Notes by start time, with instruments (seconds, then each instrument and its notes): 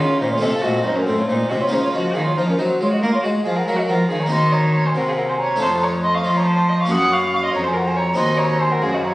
Already playing: harpsichord C#4 F4, violin F4
0.00 cello C#3, harpsichord C#3, flute C#5
0.20 cello A#2, harpsichord A#2, violin D#4, flute C5
0.32 violin F4, flute C#5
0.38 harpsichord A3 C4 F4, violin A4
0.42 harpsichord C3, cello C3, flute D#5
0.52 violin A4, flute F5
0.61 harpsichord A#2, cello A#2, violin F#4, flute D#5
0.84 harpsichord F#2, cello F#2, violin D#4, flute C5
0.95 violin C#4, flute A#4
1.05 cello A2, harpsichord A2, violin C4, flute A4
1.17 violin F4, flute C#5
1.27 cello A#2, harpsichord A#2, violin D#4, flute C5
1.49 cello C3, harpsichord C3, violin F#4, flute D#5
1.60 violin F4, flute C#5
1.67 harpsichord A#3 F4, violin D#4
1.72 harpsichord C#3, cello C#3, flute C5
1.82 violin F4, flute C#5
1.94 cello F3, harpsichord F3, violin F#4, flute D#5
2.13 cello D#3, harpsichord D#3, violin G#4, flute F5
2.24 violin F4, flute C#5
2.36 cello F3, harpsichord F3, violin D#4, flute C5
2.47 violin C#4, flute A#4
2.58 cello F#3, harpsichord F#3, violin D#4, flute C5
2.81 cello G#3, harpsichord G#3, violin F4, flute C#5
2.91 violin F#4, flute D#5
3.02 cello A#3, harpsichord A#3, violin A#4, flute F5
3.12 violin F4, flute C#5
3.23 harpsichord G#3, cello G#3, violin F#4, flute D#5
3.44 harpsichord F3, cello F3, violin G#4, flute F5
3.56 violin A#4, flute F#5
3.66 cello F#3, harpsichord F#3, violin A#4, flute F5
3.76 violin F#4, flute D#5
3.86 cello F3, harpsichord F3, violin A#4
3.90 flute F#5
4.09 cello D#3, harpsichord D#3, violin G#4, flute F5
4.19 violin C#5, flute A#5
4.26 harpsichord A#3 C4 F#4, violin D#5
4.31 harpsichord D#3, cello D#3, flute C6
4.52 violin C#5, flute A#5
4.73 violin C#5, flute A#5
4.86 violin C5, flute G#5
4.95 harpsichord C3, cello C3, violin A#4, flute F#5
5.08 violin G#4, flute F5
5.17 violin A#4, flute F#5
5.29 violin C5, flute G#5
5.39 violin C#5, flute A#5
5.56 harpsichord A3 D#4 F4
5.60 harpsichord F2, cello F2, violin C5, flute A5
5.81 violin C#5, flute A#5
6.03 violin D#5, flute C6
6.14 violin F5, flute C#6
6.24 harpsichord F3, cello F3, violin D#5, flute C6
6.37 violin C#5, flute A#5
6.47 violin C5, flute A5
6.69 violin D#5, flute C6
6.80 violin F5, flute C#6
6.85 harpsichord A#3 C#4 F#4
6.90 harpsichord F#2, cello F#2, violin F#5, flute D#6
7.12 violin F5, flute C#6
7.33 violin F5, flute C#6
7.44 violin D#5, flute C6
7.53 cello F2, harpsichord F2, violin C#5, flute A#5
7.63 violin C5, flute G#5
7.73 violin A#4, flute F#5
7.85 violin C5, flute G#5
7.96 violin C#5, flute A#5
8.14 harpsichord C4 D#4 F#4, violin D#5, flute C6
8.18 harpsichord D#2, cello D#2
8.38 violin C#5, flute A#5
8.60 violin C5, flute G#5
8.72 violin A#4, flute F#5
8.82 harpsichord F#2, cello F#2, violin G#4, flute F5
8.92 violin F#4, flute D#5
9.04 violin C#5, flute A#5